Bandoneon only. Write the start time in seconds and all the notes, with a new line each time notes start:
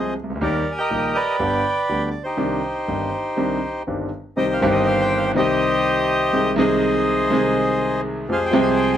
Already playing: G#4 C5 D#5
0.42 G4 A#4 D5
0.71 G#5
0.78 A#4 D#5 G5
1.15 B4 D5 G5
2.10 D5
2.23 D#4 G4 C5
4.37 G4 C5 D#5
4.53 F5
4.71 D#5
4.87 F5
5.02 G5
5.17 F5
5.37 G4 C5 D#5
6.58 G#4 C5 D#5
8.32 G#4 C5 F5
8.46 G5
8.62 G#5
8.76 G5
8.93 G5